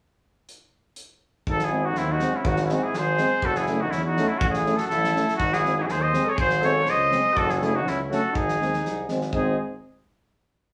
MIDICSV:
0, 0, Header, 1, 7, 480
1, 0, Start_track
1, 0, Tempo, 490998
1, 479, Time_signature, 2, 2, 24, 8
1, 10490, End_track
2, 0, Start_track
2, 0, Title_t, "Cornet"
2, 0, Program_c, 0, 56
2, 1476, Note_on_c, 0, 69, 85
2, 1607, Note_on_c, 0, 68, 68
2, 1621, Note_off_c, 0, 69, 0
2, 1811, Note_on_c, 0, 66, 73
2, 1826, Note_off_c, 0, 68, 0
2, 1937, Note_on_c, 0, 64, 74
2, 1951, Note_off_c, 0, 66, 0
2, 2075, Note_on_c, 0, 66, 68
2, 2090, Note_off_c, 0, 64, 0
2, 2311, Note_on_c, 0, 64, 59
2, 2326, Note_off_c, 0, 66, 0
2, 2412, Note_on_c, 0, 66, 79
2, 2427, Note_off_c, 0, 64, 0
2, 2527, Note_off_c, 0, 66, 0
2, 2552, Note_on_c, 0, 66, 49
2, 2587, Note_on_c, 0, 64, 49
2, 2602, Note_off_c, 0, 66, 0
2, 2675, Note_on_c, 0, 66, 67
2, 2689, Note_off_c, 0, 64, 0
2, 2774, Note_on_c, 0, 68, 74
2, 2788, Note_off_c, 0, 66, 0
2, 2917, Note_on_c, 0, 72, 91
2, 2932, Note_off_c, 0, 68, 0
2, 3380, Note_on_c, 0, 69, 93
2, 3394, Note_off_c, 0, 72, 0
2, 3488, Note_on_c, 0, 68, 71
2, 3503, Note_off_c, 0, 69, 0
2, 3721, Note_on_c, 0, 66, 72
2, 3735, Note_off_c, 0, 68, 0
2, 3821, Note_on_c, 0, 64, 72
2, 3835, Note_off_c, 0, 66, 0
2, 3951, Note_off_c, 0, 64, 0
2, 3956, Note_on_c, 0, 66, 81
2, 4189, Note_on_c, 0, 64, 71
2, 4204, Note_off_c, 0, 66, 0
2, 4283, Note_on_c, 0, 66, 97
2, 4298, Note_off_c, 0, 64, 0
2, 4397, Note_off_c, 0, 66, 0
2, 4403, Note_on_c, 0, 68, 66
2, 4661, Note_on_c, 0, 69, 72
2, 4676, Note_off_c, 0, 68, 0
2, 4764, Note_off_c, 0, 69, 0
2, 4770, Note_on_c, 0, 69, 93
2, 5234, Note_off_c, 0, 69, 0
2, 5243, Note_on_c, 0, 66, 97
2, 5414, Note_on_c, 0, 68, 79
2, 5429, Note_off_c, 0, 66, 0
2, 5642, Note_off_c, 0, 68, 0
2, 5648, Note_on_c, 0, 68, 78
2, 5691, Note_on_c, 0, 66, 61
2, 5706, Note_off_c, 0, 68, 0
2, 5735, Note_on_c, 0, 68, 78
2, 5749, Note_off_c, 0, 66, 0
2, 5782, Note_on_c, 0, 72, 95
2, 5797, Note_off_c, 0, 68, 0
2, 5889, Note_on_c, 0, 75, 74
2, 5904, Note_off_c, 0, 72, 0
2, 6150, Note_on_c, 0, 73, 87
2, 6165, Note_off_c, 0, 75, 0
2, 6248, Note_off_c, 0, 73, 0
2, 6254, Note_on_c, 0, 72, 100
2, 6506, Note_on_c, 0, 73, 94
2, 6520, Note_off_c, 0, 72, 0
2, 6750, Note_on_c, 0, 75, 97
2, 6765, Note_off_c, 0, 73, 0
2, 7213, Note_on_c, 0, 69, 100
2, 7228, Note_off_c, 0, 75, 0
2, 7335, Note_on_c, 0, 68, 57
2, 7349, Note_off_c, 0, 69, 0
2, 7402, Note_on_c, 0, 69, 57
2, 7417, Note_off_c, 0, 68, 0
2, 7468, Note_on_c, 0, 68, 73
2, 7482, Note_off_c, 0, 69, 0
2, 7583, Note_on_c, 0, 66, 73
2, 7598, Note_off_c, 0, 68, 0
2, 7714, Note_on_c, 0, 64, 76
2, 7729, Note_off_c, 0, 66, 0
2, 7828, Note_off_c, 0, 64, 0
2, 7939, Note_on_c, 0, 69, 75
2, 8160, Note_off_c, 0, 69, 0
2, 8174, Note_on_c, 0, 68, 77
2, 8854, Note_off_c, 0, 68, 0
2, 9131, Note_on_c, 0, 68, 81
2, 9354, Note_off_c, 0, 68, 0
2, 10490, End_track
3, 0, Start_track
3, 0, Title_t, "Trumpet"
3, 0, Program_c, 1, 56
3, 1456, Note_on_c, 1, 63, 51
3, 1584, Note_on_c, 1, 64, 53
3, 1598, Note_off_c, 1, 63, 0
3, 1819, Note_on_c, 1, 63, 61
3, 1834, Note_off_c, 1, 64, 0
3, 1935, Note_on_c, 1, 60, 68
3, 1950, Note_off_c, 1, 63, 0
3, 2061, Note_on_c, 1, 63, 64
3, 2076, Note_off_c, 1, 60, 0
3, 2282, Note_on_c, 1, 61, 56
3, 2296, Note_off_c, 1, 63, 0
3, 2397, Note_on_c, 1, 63, 66
3, 2411, Note_off_c, 1, 61, 0
3, 2517, Note_off_c, 1, 63, 0
3, 2522, Note_on_c, 1, 63, 55
3, 2573, Note_on_c, 1, 61, 47
3, 2587, Note_off_c, 1, 63, 0
3, 2652, Note_on_c, 1, 63, 54
3, 2667, Note_off_c, 1, 61, 0
3, 2761, Note_on_c, 1, 64, 70
3, 2776, Note_off_c, 1, 63, 0
3, 2888, Note_on_c, 1, 68, 83
3, 2903, Note_off_c, 1, 64, 0
3, 3361, Note_on_c, 1, 66, 67
3, 3376, Note_off_c, 1, 68, 0
3, 3504, Note_on_c, 1, 64, 62
3, 3519, Note_off_c, 1, 66, 0
3, 3744, Note_on_c, 1, 63, 62
3, 3758, Note_off_c, 1, 64, 0
3, 3846, Note_on_c, 1, 61, 67
3, 3861, Note_off_c, 1, 63, 0
3, 3966, Note_off_c, 1, 61, 0
3, 3972, Note_on_c, 1, 63, 58
3, 4221, Note_on_c, 1, 61, 53
3, 4235, Note_off_c, 1, 63, 0
3, 4354, Note_off_c, 1, 61, 0
3, 4354, Note_on_c, 1, 61, 59
3, 4461, Note_off_c, 1, 61, 0
3, 4466, Note_on_c, 1, 64, 61
3, 4682, Note_on_c, 1, 66, 64
3, 4697, Note_off_c, 1, 64, 0
3, 4791, Note_off_c, 1, 66, 0
3, 4797, Note_on_c, 1, 64, 83
3, 5248, Note_off_c, 1, 64, 0
3, 5269, Note_on_c, 1, 63, 64
3, 5406, Note_on_c, 1, 64, 68
3, 5421, Note_off_c, 1, 63, 0
3, 5640, Note_off_c, 1, 64, 0
3, 5646, Note_on_c, 1, 64, 68
3, 5667, Note_on_c, 1, 63, 64
3, 5682, Note_off_c, 1, 64, 0
3, 5682, Note_on_c, 1, 64, 71
3, 5696, Note_off_c, 1, 63, 0
3, 5745, Note_on_c, 1, 68, 77
3, 5760, Note_off_c, 1, 64, 0
3, 5876, Note_on_c, 1, 72, 69
3, 5890, Note_off_c, 1, 68, 0
3, 6114, Note_on_c, 1, 69, 70
3, 6128, Note_off_c, 1, 72, 0
3, 6194, Note_off_c, 1, 69, 0
3, 6200, Note_on_c, 1, 68, 80
3, 6465, Note_on_c, 1, 69, 68
3, 6479, Note_off_c, 1, 68, 0
3, 6682, Note_on_c, 1, 72, 87
3, 6697, Note_off_c, 1, 69, 0
3, 7176, Note_on_c, 1, 66, 75
3, 7190, Note_off_c, 1, 72, 0
3, 7299, Note_on_c, 1, 64, 52
3, 7314, Note_off_c, 1, 66, 0
3, 7367, Note_on_c, 1, 66, 51
3, 7381, Note_off_c, 1, 64, 0
3, 7430, Note_on_c, 1, 64, 64
3, 7445, Note_off_c, 1, 66, 0
3, 7559, Note_on_c, 1, 63, 71
3, 7574, Note_off_c, 1, 64, 0
3, 7672, Note_on_c, 1, 61, 68
3, 7686, Note_off_c, 1, 63, 0
3, 7807, Note_off_c, 1, 61, 0
3, 7921, Note_on_c, 1, 66, 74
3, 8131, Note_off_c, 1, 66, 0
3, 8137, Note_on_c, 1, 63, 65
3, 8836, Note_off_c, 1, 63, 0
3, 9132, Note_on_c, 1, 63, 56
3, 9354, Note_off_c, 1, 63, 0
3, 10490, End_track
4, 0, Start_track
4, 0, Title_t, "Trombone"
4, 0, Program_c, 2, 57
4, 1685, Note_on_c, 2, 60, 55
4, 1779, Note_off_c, 2, 60, 0
4, 2165, Note_on_c, 2, 60, 60
4, 2259, Note_off_c, 2, 60, 0
4, 2661, Note_on_c, 2, 60, 61
4, 2752, Note_off_c, 2, 60, 0
4, 3137, Note_on_c, 2, 60, 72
4, 3229, Note_off_c, 2, 60, 0
4, 3601, Note_on_c, 2, 61, 54
4, 3697, Note_off_c, 2, 61, 0
4, 4081, Note_on_c, 2, 61, 63
4, 4177, Note_off_c, 2, 61, 0
4, 4552, Note_on_c, 2, 61, 54
4, 4650, Note_off_c, 2, 61, 0
4, 5041, Note_on_c, 2, 61, 58
4, 5138, Note_off_c, 2, 61, 0
4, 5514, Note_on_c, 2, 60, 46
4, 5613, Note_off_c, 2, 60, 0
4, 6008, Note_on_c, 2, 60, 67
4, 6104, Note_off_c, 2, 60, 0
4, 6485, Note_on_c, 2, 60, 57
4, 6583, Note_off_c, 2, 60, 0
4, 6964, Note_on_c, 2, 60, 66
4, 7062, Note_off_c, 2, 60, 0
4, 7440, Note_on_c, 2, 61, 63
4, 7539, Note_off_c, 2, 61, 0
4, 7928, Note_on_c, 2, 61, 66
4, 8026, Note_off_c, 2, 61, 0
4, 8416, Note_on_c, 2, 60, 49
4, 8511, Note_off_c, 2, 60, 0
4, 8895, Note_on_c, 2, 60, 62
4, 8990, Note_off_c, 2, 60, 0
4, 9125, Note_on_c, 2, 60, 64
4, 9351, Note_off_c, 2, 60, 0
4, 10490, End_track
5, 0, Start_track
5, 0, Title_t, "Euphonium"
5, 0, Program_c, 3, 58
5, 1672, Note_on_c, 3, 56, 53
5, 1768, Note_off_c, 3, 56, 0
5, 2163, Note_on_c, 3, 56, 53
5, 2257, Note_off_c, 3, 56, 0
5, 2636, Note_on_c, 3, 56, 61
5, 2732, Note_off_c, 3, 56, 0
5, 3105, Note_on_c, 3, 56, 64
5, 3203, Note_off_c, 3, 56, 0
5, 3596, Note_on_c, 3, 57, 52
5, 3692, Note_off_c, 3, 57, 0
5, 4083, Note_on_c, 3, 57, 64
5, 4178, Note_off_c, 3, 57, 0
5, 4559, Note_on_c, 3, 57, 52
5, 4656, Note_off_c, 3, 57, 0
5, 5042, Note_on_c, 3, 57, 53
5, 5139, Note_off_c, 3, 57, 0
5, 5509, Note_on_c, 3, 56, 45
5, 5609, Note_off_c, 3, 56, 0
5, 5995, Note_on_c, 3, 56, 61
5, 6094, Note_off_c, 3, 56, 0
5, 6484, Note_on_c, 3, 56, 62
5, 6581, Note_off_c, 3, 56, 0
5, 6952, Note_on_c, 3, 56, 62
5, 7052, Note_off_c, 3, 56, 0
5, 7441, Note_on_c, 3, 57, 59
5, 7539, Note_off_c, 3, 57, 0
5, 7926, Note_on_c, 3, 57, 54
5, 8023, Note_off_c, 3, 57, 0
5, 8419, Note_on_c, 3, 56, 57
5, 8514, Note_off_c, 3, 56, 0
5, 8879, Note_on_c, 3, 56, 56
5, 8977, Note_off_c, 3, 56, 0
5, 9128, Note_on_c, 3, 56, 65
5, 9352, Note_off_c, 3, 56, 0
5, 10490, End_track
6, 0, Start_track
6, 0, Title_t, "Tuba"
6, 0, Program_c, 4, 58
6, 1453, Note_on_c, 4, 32, 78
6, 1922, Note_on_c, 4, 39, 81
6, 1936, Note_off_c, 4, 32, 0
6, 2184, Note_off_c, 4, 39, 0
6, 2394, Note_on_c, 4, 32, 99
6, 2658, Note_off_c, 4, 32, 0
6, 2884, Note_on_c, 4, 32, 83
6, 3146, Note_off_c, 4, 32, 0
6, 3357, Note_on_c, 4, 30, 83
6, 3829, Note_on_c, 4, 40, 78
6, 3844, Note_off_c, 4, 30, 0
6, 4097, Note_off_c, 4, 40, 0
6, 4323, Note_on_c, 4, 33, 82
6, 4587, Note_off_c, 4, 33, 0
6, 4811, Note_on_c, 4, 33, 85
6, 5074, Note_off_c, 4, 33, 0
6, 5286, Note_on_c, 4, 32, 84
6, 5776, Note_on_c, 4, 39, 86
6, 5791, Note_off_c, 4, 32, 0
6, 6039, Note_off_c, 4, 39, 0
6, 6254, Note_on_c, 4, 32, 80
6, 6742, Note_on_c, 4, 37, 75
6, 6756, Note_off_c, 4, 32, 0
6, 7004, Note_off_c, 4, 37, 0
6, 7222, Note_on_c, 4, 30, 92
6, 7693, Note_on_c, 4, 37, 81
6, 7708, Note_off_c, 4, 30, 0
6, 7957, Note_off_c, 4, 37, 0
6, 8169, Note_on_c, 4, 32, 79
6, 8403, Note_off_c, 4, 32, 0
6, 8409, Note_on_c, 4, 39, 68
6, 8627, Note_off_c, 4, 39, 0
6, 8651, Note_on_c, 4, 36, 66
6, 8868, Note_off_c, 4, 36, 0
6, 8896, Note_on_c, 4, 32, 64
6, 9110, Note_off_c, 4, 32, 0
6, 9137, Note_on_c, 4, 32, 77
6, 9357, Note_off_c, 4, 32, 0
6, 10490, End_track
7, 0, Start_track
7, 0, Title_t, "Drums"
7, 476, Note_on_c, 9, 42, 48
7, 574, Note_off_c, 9, 42, 0
7, 942, Note_on_c, 9, 42, 55
7, 1039, Note_off_c, 9, 42, 0
7, 1436, Note_on_c, 9, 36, 61
7, 1534, Note_off_c, 9, 36, 0
7, 1555, Note_on_c, 9, 38, 23
7, 1653, Note_off_c, 9, 38, 0
7, 1909, Note_on_c, 9, 38, 23
7, 2007, Note_off_c, 9, 38, 0
7, 2146, Note_on_c, 9, 38, 26
7, 2244, Note_off_c, 9, 38, 0
7, 2393, Note_on_c, 9, 36, 87
7, 2491, Note_off_c, 9, 36, 0
7, 2507, Note_on_c, 9, 38, 26
7, 2604, Note_off_c, 9, 38, 0
7, 2630, Note_on_c, 9, 38, 23
7, 2728, Note_off_c, 9, 38, 0
7, 2871, Note_on_c, 9, 38, 28
7, 2969, Note_off_c, 9, 38, 0
7, 3105, Note_on_c, 9, 38, 25
7, 3203, Note_off_c, 9, 38, 0
7, 3347, Note_on_c, 9, 36, 62
7, 3445, Note_off_c, 9, 36, 0
7, 3472, Note_on_c, 9, 38, 23
7, 3570, Note_off_c, 9, 38, 0
7, 3583, Note_on_c, 9, 38, 22
7, 3681, Note_off_c, 9, 38, 0
7, 3829, Note_on_c, 9, 38, 23
7, 3927, Note_off_c, 9, 38, 0
7, 4076, Note_on_c, 9, 38, 24
7, 4174, Note_off_c, 9, 38, 0
7, 4311, Note_on_c, 9, 36, 95
7, 4409, Note_off_c, 9, 36, 0
7, 4435, Note_on_c, 9, 38, 25
7, 4533, Note_off_c, 9, 38, 0
7, 4558, Note_on_c, 9, 38, 22
7, 4655, Note_off_c, 9, 38, 0
7, 4669, Note_on_c, 9, 38, 24
7, 4767, Note_off_c, 9, 38, 0
7, 4792, Note_on_c, 9, 38, 26
7, 4890, Note_off_c, 9, 38, 0
7, 4929, Note_on_c, 9, 38, 30
7, 5026, Note_off_c, 9, 38, 0
7, 5047, Note_on_c, 9, 38, 28
7, 5145, Note_off_c, 9, 38, 0
7, 5165, Note_on_c, 9, 38, 21
7, 5263, Note_off_c, 9, 38, 0
7, 5275, Note_on_c, 9, 36, 71
7, 5373, Note_off_c, 9, 36, 0
7, 5405, Note_on_c, 9, 38, 26
7, 5503, Note_off_c, 9, 38, 0
7, 5525, Note_on_c, 9, 38, 22
7, 5623, Note_off_c, 9, 38, 0
7, 5755, Note_on_c, 9, 38, 27
7, 5853, Note_off_c, 9, 38, 0
7, 5999, Note_on_c, 9, 38, 27
7, 6096, Note_off_c, 9, 38, 0
7, 6237, Note_on_c, 9, 36, 83
7, 6334, Note_off_c, 9, 36, 0
7, 6352, Note_on_c, 9, 38, 23
7, 6449, Note_off_c, 9, 38, 0
7, 6471, Note_on_c, 9, 38, 21
7, 6568, Note_off_c, 9, 38, 0
7, 6706, Note_on_c, 9, 38, 24
7, 6804, Note_off_c, 9, 38, 0
7, 6958, Note_on_c, 9, 38, 28
7, 7056, Note_off_c, 9, 38, 0
7, 7201, Note_on_c, 9, 36, 65
7, 7299, Note_off_c, 9, 36, 0
7, 7326, Note_on_c, 9, 38, 23
7, 7424, Note_off_c, 9, 38, 0
7, 7448, Note_on_c, 9, 38, 22
7, 7545, Note_off_c, 9, 38, 0
7, 7694, Note_on_c, 9, 38, 26
7, 7791, Note_off_c, 9, 38, 0
7, 7936, Note_on_c, 9, 38, 23
7, 8033, Note_off_c, 9, 38, 0
7, 8166, Note_on_c, 9, 36, 75
7, 8264, Note_off_c, 9, 36, 0
7, 8295, Note_on_c, 9, 38, 23
7, 8393, Note_off_c, 9, 38, 0
7, 8422, Note_on_c, 9, 38, 19
7, 8520, Note_off_c, 9, 38, 0
7, 8537, Note_on_c, 9, 38, 19
7, 8635, Note_off_c, 9, 38, 0
7, 8655, Note_on_c, 9, 38, 25
7, 8753, Note_off_c, 9, 38, 0
7, 8882, Note_on_c, 9, 38, 23
7, 8979, Note_off_c, 9, 38, 0
7, 9005, Note_on_c, 9, 38, 20
7, 9103, Note_off_c, 9, 38, 0
7, 9119, Note_on_c, 9, 36, 66
7, 9217, Note_off_c, 9, 36, 0
7, 10490, End_track
0, 0, End_of_file